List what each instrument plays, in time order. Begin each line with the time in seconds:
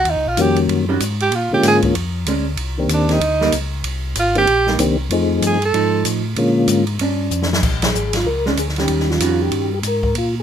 Already playing: tenor saxophone F#4
0.05 tonewheel organ D#2, ride
0.10 tenor saxophone D#4
0.15 tonewheel organ C#2
0.26 tonewheel organ A#1, tenor saxophone F4
0.37 tonewheel organ F2 D#3 G3 A#3 C#4 F#4, tenor saxophone G4, hi-hat pedal, ride
0.56 ride
0.68 tonewheel organ F#2, ride
0.89 hollow-body jazz guitar D#3 G3 C#4 F#4
1.00 tonewheel organ G#2, hi-hat pedal, ride
1.20 tenor saxophone G4, ride
1.31 tonewheel organ A#2, ride
1.35 tenor saxophone F4
1.51 tonewheel organ A#2 D3 G#3 A#3 C#4 F4, tenor saxophone G4
1.63 tonewheel organ G#2, snare, hi-hat pedal, ride
1.68 tenor saxophone G#4
1.82 tonewheel organ D3 G#3 A#3 C#4 F4, kick, ride
1.94 tonewheel organ F2, ride
2.25 tonewheel organ D2, hollow-body jazz guitar G#3 C#4 D4, hi-hat pedal, ride
2.57 tonewheel organ C2, ride
2.78 tonewheel organ D#3 A#3 C4 D4 G4
2.88 tonewheel organ D#2, hi-hat pedal, ride
2.94 tenor saxophone D4
3.08 tonewheel organ D#3 A#3 C4 D4 G4, snare, ride
3.12 tenor saxophone D#4
3.20 tonewheel organ D2, ride
3.41 hollow-body jazz guitar G3 A#3 D#4, snare
3.52 tonewheel organ C#2, hi-hat pedal, ride
3.83 tonewheel organ C2, ride
4.15 tonewheel organ G#1, hi-hat pedal, ride
4.19 tenor saxophone F4
4.35 tonewheel organ D#3 A#3 C4 D4 G4, tenor saxophone G4, ride
4.46 tonewheel organ A#1, ride
4.67 hollow-body jazz guitar G3 A#3 D#4, snare
4.78 tonewheel organ C2 D#3 A#3 C4 D4 G4, hi-hat pedal, ride
5.09 tonewheel organ F2 F3 A3 C4 D#4 G#4, ride
5.42 tonewheel organ G2, hi-hat pedal, ride
5.47 tenor saxophone G#4
5.62 tenor saxophone A4, ride
5.73 tonewheel organ G#2, hollow-body jazz guitar F3 D#4, ride
6.05 tonewheel organ A2, hi-hat pedal, ride
6.36 tonewheel organ A#2 D3 G#3 A#3 C#4 F4, ride
6.68 tonewheel organ G#2, hi-hat pedal, ride
6.87 ride
6.99 tonewheel organ G2, hollow-body jazz guitar C#4 D4, ride
7.31 tonewheel organ F2, hi-hat pedal
7.42 snare
7.53 snare
7.63 tonewheel organ A#1, kick, crash
7.82 tonewheel organ G#4, snare, ride
7.94 tonewheel organ G#1, hi-hat pedal
8.13 tonewheel organ F4, snare, ride
8.25 tonewheel organ C#2 A#4
8.46 hollow-body jazz guitar G#3 C#4 D4, tonewheel organ G#4, snare
8.57 tonewheel organ D2 G#4, hi-hat pedal, ride
8.68 snare
8.76 hollow-body jazz guitar D#3 G3 C#4, tonewheel organ G4, snare, ride
8.88 tonewheel organ D#2, ride
9.00 snare
9.10 tonewheel organ F4, snare
9.20 tonewheel organ F2, hollow-body jazz guitar D#3 G3 C#4 F#4, hi-hat pedal, ride
9.42 tonewheel organ G4
9.52 tonewheel organ G2, ride
9.74 tonewheel organ G4
9.83 tonewheel organ G#2, hi-hat pedal, ride
9.87 tonewheel organ A#4
10.03 kick
10.14 tonewheel organ A#2 F4, ride
10.40 tonewheel organ G#4